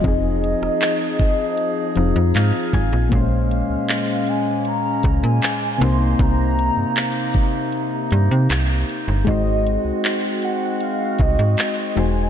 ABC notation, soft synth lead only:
X:1
M:4/4
L:1/16
Q:1/4=78
K:Bbm
V:1 name="Soft synth lead"
e12- e2 z2 | f6 a2 b3 a3 c'2 | b8 z8 | e4 z2 g2 f2 e4 a2 |]